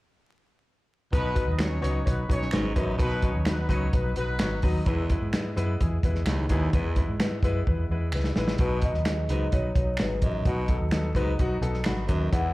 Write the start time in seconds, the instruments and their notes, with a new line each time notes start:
1.12 fingered electric bass B1, baritone saxophone B2, grand piano F#3 B3 D#4 B4, horn section B3 B4, kick, closed hi-hat
1.35 grand piano F#3 B3 D#4 B4, kick, closed hi-hat
1.47 fingered electric bass D#2, horn section D#4 D#5
1.58 grand piano F#3 B3 D#4 B4, horn section C#4 C#5, finger snap, snare, closed hi-hat
1.82 fingered electric bass C#2, grand piano F#3 B3 D#4 C#5, closed hi-hat
2.05 fingered electric bass B1, grand piano F#3 B3 D#4 C#5, horn section B3 B4, kick, closed hi-hat
2.29 fingered electric bass B1, grand piano F#3 B3 D#4 B4, horn section C#4 C#5, kick, closed hi-hat
2.42 snare
2.51 fingered electric bass G#1, baritone saxophone G#2, grand piano F#3 B3 D#4 B4, finger snap, snare, closed hi-hat
2.76 fingered electric bass A1, baritone saxophone F#2, grand piano F#3 B3 D#4 B4, kick, closed hi-hat
2.98 fingered electric bass B1, baritone saxophone B2, grand piano F#3 B3 D#4 B4, horn section B3 B4, kick, closed hi-hat
3.22 grand piano F#3 B3 D#4 B4, horn section C#4 C#5, kick, closed hi-hat
3.34 fingered electric bass D#2
3.45 grand piano F#3 B3 D#4 B4, horn section B3 B4, finger snap, snare, closed hi-hat
3.69 fingered electric bass C#2, grand piano F#3 B3 D#4 B4, horn section C#4 C#5, kick, closed hi-hat
3.93 fingered electric bass B1, grand piano F#3 B3 D#4 B4, horn section B3 B4, kick, closed hi-hat
4.16 fingered electric bass B1, grand piano F#3 B3 D#4 B4, horn section B3 B4, closed hi-hat
4.39 fingered electric bass G#1, grand piano F#3 B3 D#4 C#5, finger snap, snare, closed hi-hat
4.62 fingered electric bass D#2, grand piano F#3 B3 D#4 B4, kick, open hi-hat
4.85 baritone saxophone E2, fingered electric bass E2, grand piano G#3 B3 E4 B4, kick, closed hi-hat
5.10 grand piano G#3 B3 E4 B4, kick, closed hi-hat
5.22 fingered electric bass G#2
5.33 grand piano G#3 B3 E4 B4, finger snap, snare, closed hi-hat
5.56 fingered electric bass F#2, grand piano G#3 B3 E4 B4, closed hi-hat
5.80 fingered electric bass E2, grand piano G#3 B3 E4 G#4, kick, closed hi-hat
6.03 fingered electric bass E2, grand piano G#3 B3 E4 B4, kick, closed hi-hat
6.15 snare
6.25 fingered electric bass C#2, baritone saxophone D#2, grand piano G#3 B3 E4 B4, finger snap, snare, closed hi-hat
6.48 baritone saxophone D#2, fingered electric bass D#2, grand piano G#3 B3 E4 G#4, kick, closed hi-hat
6.72 baritone saxophone E2, fingered electric bass E2, grand piano G#3 B3 E4 B4, kick, closed hi-hat
6.96 grand piano G#3 B3 E4 B4, kick, closed hi-hat
7.09 fingered electric bass G#2
7.20 grand piano G#3 B3 E4 B4, finger snap, snare, closed hi-hat
7.43 fingered electric bass F#2, grand piano G#3 B3 E4 B4, kick, closed hi-hat
7.67 fingered electric bass E2, grand piano G#3 B3 E4 B4, kick
7.89 fingered electric bass E2, grand piano G#3 B3 E4 B4
8.12 fingered electric bass C#2, grand piano G#3 B3 E4 B4, finger snap
8.24 snare
8.36 fingered electric bass A1, grand piano G#3 B3 E4 B4, snare
8.48 snare
8.58 fingered electric bass B1, baritone saxophone B2, grand piano F#3 B3 D#4 B4, kick, closed hi-hat
8.81 grand piano F#3 B3 D#4 B4, vibraphone D#5, kick, closed hi-hat
8.94 fingered electric bass D#2, snare
9.05 grand piano F#3 B3 D#4 G#4, finger snap, snare, closed hi-hat
9.28 fingered electric bass C#2, baritone saxophone G#2, grand piano F#3 B3 D#4 B4, closed hi-hat
9.52 fingered electric bass B1, grand piano F#3 B3 D#4 B4, vibraphone C#5, kick, closed hi-hat
9.75 fingered electric bass B1, grand piano F#3 B3 D#4 B4, kick, closed hi-hat
9.97 fingered electric bass G#1, grand piano F#3 B3 D#4 G#4, vibraphone B4, finger snap, snare, closed hi-hat
10.22 fingered electric bass A1, baritone saxophone F#2, grand piano F#3 B3 D#4 B4, vibraphone D#5, kick, closed hi-hat
10.45 fingered electric bass B1, baritone saxophone B2, grand piano F#3 B3 D#4 F#4, kick, closed hi-hat
10.68 grand piano F#3 B3 D#4 A4, kick, closed hi-hat
10.81 fingered electric bass D#2
10.91 grand piano F#3 B3 D#4 A4, finger snap, snare, closed hi-hat
11.14 fingered electric bass C#2, baritone saxophone G#2, grand piano F#3 B3 D#4 B4 D#5, kick, closed hi-hat
11.39 fingered electric bass B1, grand piano F#3 B3 D#4 F#4 F#5, kick, closed hi-hat
11.61 fingered electric bass B1, grand piano F#3 B3 D#4 A4 A5, closed hi-hat
11.74 snare
11.84 fingered electric bass G#1, grand piano F#3 B3 D#4 F#4 B5, finger snap, snare, closed hi-hat
12.07 fingered electric bass D#2, baritone saxophone F#2, grand piano F#3 B3 D#4 B4, kick, closed hi-hat
12.31 baritone saxophone E2, fingered electric bass E2, grand piano G#3 B3 E4 B4, vibraphone F#5, kick, closed hi-hat